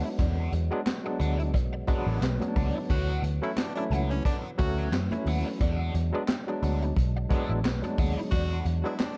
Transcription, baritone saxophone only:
2.90 3.17 F#4 loud
3.43 3.59 E4 medium
3.57 3.72 D4 loud
3.75 3.85 D4 medium
4.10 4.22 C#4 loud
4.25 4.36 D4 loud
4.58 4.86 F#4 loud
8.31 8.59 F#4 loud
8.84 9.00 E4 medium
8.99 9.14 D4 loud

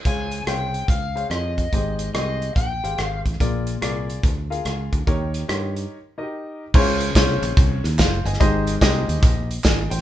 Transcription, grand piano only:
0.05 0.71 C#3 soft
0.05 0.40 G#4 medium
0.05 0.40 C5 medium
0.05 0.40 C#5 medium
0.05 0.40 F5 medium
0.47 0.95 G#4 medium
0.47 0.95 C5 soft
0.47 0.95 C#5 medium
0.47 0.95 F5 medium
1.16 1.61 G#4 medium
1.16 1.61 C5 soft
1.16 1.61 C#5 medium
1.16 1.61 F5 medium
1.73 2.38 G#2 medium
1.73 2.07 G4 medium
1.73 2.07 G#4 medium
1.73 2.07 C5 medium
1.73 2.08 D#5 medium
2.15 2.62 G4 medium
2.15 2.62 G#4 medium
2.15 2.62 C5 medium
2.15 2.63 D#5 medium
2.83 3.29 G4 medium
2.83 3.29 G#4 soft
2.83 3.29 C5 medium
2.83 3.29 F5 medium
3.40 4.05 A#2 medium
3.40 3.74 F4 medium
3.40 3.74 G#4 medium
3.40 3.75 A#4 medium
3.40 3.75 D5 medium
3.81 4.29 F4 medium
3.81 4.30 G#4 medium
3.81 4.30 A#4 medium
3.81 4.30 D5 medium
4.50 4.96 F4 medium
4.50 4.96 G#4 medium
4.50 4.96 A#4 medium
4.50 4.96 F5 medium
5.07 5.72 D#3 medium
5.07 5.41 D#4 medium
5.07 5.41 G4 medium
5.07 5.42 A#4 medium
5.07 5.42 C#5 medium
5.48 5.96 D#4 medium
5.48 5.97 G4 medium
5.48 5.97 A#4 medium
5.48 5.97 C#5 medium
6.18 6.63 D#4 medium
6.18 6.22 F#4 soft
6.18 6.63 A#4 medium
6.18 6.63 D#5 medium
6.23 6.65 G4 medium
6.74 7.39 C#3 medium
6.74 7.08 C#4 medium
6.74 6.81 E4 medium
6.74 7.08 G#4 medium
6.74 7.08 C5 medium
6.74 7.09 C#5 loud
6.80 7.11 F4 medium
7.16 7.83 C#4 medium
7.16 7.83 F4 medium
7.16 7.83 G#4 medium
7.16 7.83 C5 medium
7.16 7.83 C#5 medium
7.98 8.24 C5 medium
7.98 8.24 F5 medium
8.25 8.39 D#5 medium
8.25 8.65 G#5 medium
8.40 9.04 G#2 medium
8.40 8.74 D#4 medium
8.40 8.74 G4 medium
8.40 8.74 G#4 medium
8.40 8.74 C5 medium
8.40 8.74 D#5 loud
8.81 9.49 D#4 medium
8.81 9.49 G4 medium
8.81 9.49 G#4 medium
8.81 8.88 A#4 medium
8.81 9.49 D#5 loud
8.87 9.51 C5 medium
9.64 9.90 D#5 medium
9.64 9.90 G#5 medium
9.90 10.01 C5 medium
9.90 10.01 G5 medium

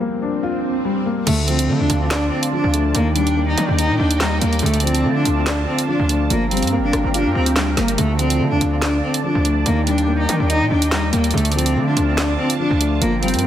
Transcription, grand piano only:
0.00 0.64 F3 medium
0.00 0.83 G3 medium
0.00 1.04 A#3 medium
0.22 1.27 D4 medium
0.43 1.27 F4 loud
0.85 1.27 G3 medium
1.06 1.27 A#3 medium
1.27 2.32 D3 loud
1.48 2.51 F3 medium
1.69 2.72 A3 medium
1.90 2.95 D4 medium
2.11 2.95 D5 loud
2.52 2.95 F3 medium
2.74 2.95 A3 medium
2.95 4.00 D#3 loud
3.16 4.19 G3 medium
3.37 4.40 A#3 medium
3.58 4.62 D4 medium
3.79 4.63 D#4 medium
4.21 4.63 G3 medium
4.41 4.62 A#3 medium
4.63 5.67 D3 medium
4.83 5.87 F3 medium
5.05 6.08 A3 medium
5.25 6.30 D4 medium
5.46 6.30 D5 loud
5.88 6.29 F3 medium
6.09 6.30 A3 medium
6.30 7.35 F3 medium
6.51 7.55 G3 medium
6.72 7.76 A#3 medium
6.93 7.98 D4 medium
7.14 7.98 F4 loud
7.56 7.98 G3 medium
7.77 7.98 A#3 medium
7.98 9.03 D3 loud
8.19 9.22 F3 medium
8.40 9.43 A3 medium
8.61 9.66 D4 medium
8.82 9.66 D5 loud
9.24 9.66 F3 medium
9.45 9.66 A3 medium
9.66 10.71 D#3 loud
9.87 10.90 G3 medium
10.08 11.11 A#3 medium
10.29 11.34 D4 medium
10.50 11.34 D#4 loud
10.92 11.34 G3 medium
11.13 11.34 A#3 medium
11.34 12.39 D3 medium
11.55 12.58 F3 medium
11.76 12.79 A3 medium
11.97 13.02 D4 medium
12.18 13.02 D5 loud
12.60 13.00 F3 medium
12.80 13.01 A3 medium
13.02 13.47 F3 loud
13.22 13.47 G3 medium
13.43 13.47 A#3 medium

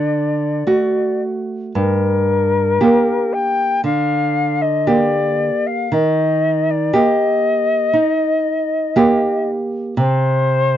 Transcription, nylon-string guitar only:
0.00 0.62 D3 soft
0.67 1.71 A3 soft
0.67 1.72 F#4 soft
1.75 2.78 G2 soft
2.81 3.80 A#3 soft
2.81 3.80 G4 soft
3.84 5.50 D3 soft
4.87 5.88 A#3 soft
4.87 5.88 G4 soft
5.92 6.91 D#3 soft
6.93 7.91 A#3 soft
6.93 7.91 G4 soft
7.93 9.58 D#4 soft
8.96 9.94 A#3 soft
8.96 9.94 G4 soft
9.97 10.77 C3 soft

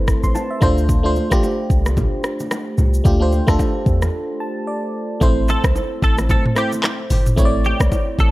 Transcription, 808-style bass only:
0.00 0.16 G1 loud
0.23 0.33 A1 medium
0.62 1.20 D2 medium
1.32 1.41 A1 medium
1.70 2.06 C2 medium
2.78 3.01 C2 loud
3.05 3.41 D2 loud
3.48 3.57 D2 medium
3.86 4.09 E2 medium
5.21 5.57 A1 loud
5.64 5.73 C2 medium
6.02 6.38 A1 medium
7.11 7.33 G1 loud
7.38 7.73 A1 loud
7.80 7.90 C2 medium
8.19 8.31 A1 medium

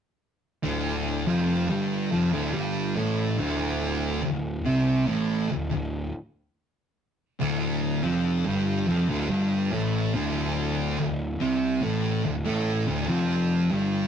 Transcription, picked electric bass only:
0.64 1.23 D1 medium
1.27 1.66 F1 medium
1.69 2.09 G1 medium
2.11 2.31 F1 medium
2.34 2.53 D1 medium
2.54 2.94 G1 medium
2.97 3.36 A1 medium
3.39 4.20 D1 medium
4.25 4.64 D1 medium
4.66 5.05 C2 medium
5.09 5.48 A1 medium
5.52 5.71 D1 medium
5.73 6.12 D1 medium
7.41 8.00 D1 medium
8.04 8.43 F1 medium
8.46 8.85 G1 medium
8.89 9.08 F1 loud
9.10 9.29 D1 medium
9.31 9.70 G1 medium
9.72 10.11 A1 medium
10.15 10.95 D1 medium
10.99 11.38 D1 medium
11.41 11.80 C2 medium
11.83 12.22 A1 medium
12.26 12.45 D1 medium
12.47 12.85 A1 medium
12.88 13.07 D1 medium
13.09 13.67 F1 medium
13.71 14.07 G1 medium

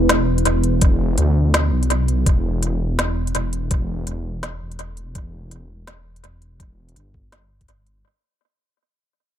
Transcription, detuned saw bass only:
0.00 0.44 E1 medium
0.46 1.17 E1 medium
1.18 1.71 D2 loud
1.72 2.25 B1 medium
2.27 3.34 E1 medium
3.35 4.06 E1 medium
4.07 4.60 E1 medium
4.61 5.14 E1 medium
5.15 6.23 E1 medium
6.24 6.95 E1 medium
6.96 8.03 G1 medium

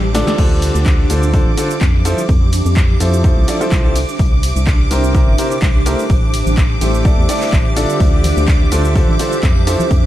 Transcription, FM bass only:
0.00 0.24 A1 medium
0.38 0.72 D2 loud
0.75 1.07 D2 loud
1.10 1.43 D2 loud
1.46 1.56 A1 loud
1.81 2.14 F2 medium
2.29 2.62 F2 loud
2.65 2.97 F2 loud
3.00 3.33 F2 loud
3.37 3.46 C2 loud
3.72 4.05 C2 medium
4.19 4.52 C2 loud
4.56 4.88 C2 loud
4.91 5.24 C2 loud
5.27 5.37 G1 loud
5.62 5.95 C2 medium
6.10 6.43 A1 loud
6.46 6.78 A1 loud
6.81 7.14 A1 medium
7.18 7.27 E2 medium
7.53 7.86 A1 medium
8.00 8.33 D2 loud
8.37 8.69 D2 loud
8.72 9.05 D2 loud
9.08 9.18 A1 loud
9.43 9.76 F2 medium
9.91 10.06 F2 loud

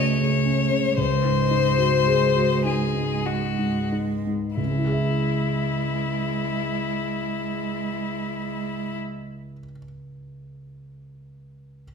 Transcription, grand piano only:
0.00 0.94 C#2 soft
0.00 0.20 C#3 soft
0.00 0.46 C#4 soft
0.00 1.01 F#4 soft
0.00 1.00 A4 soft
0.20 0.62 C#3 soft
0.46 0.87 C#4 soft
0.71 0.98 C#3 soft
0.98 4.54 C#2 soft
1.24 1.68 G#2 soft
1.51 1.95 D#4 soft
1.78 2.24 F#4 soft
2.07 2.53 G#4 soft
2.36 2.83 F#4 soft
2.65 3.14 D#4 soft
2.95 3.45 G#2 soft
3.26 3.79 D#4 soft
3.59 4.13 G#2 soft
3.92 4.45 D#4 soft
4.27 4.58 G#2 soft
4.57 9.51 C#2 soft
4.65 9.58 C#3 soft
4.71 9.65 C#4 soft
4.79 9.72 E4 soft
4.85 9.79 G#4 soft
4.92 9.84 E5 soft

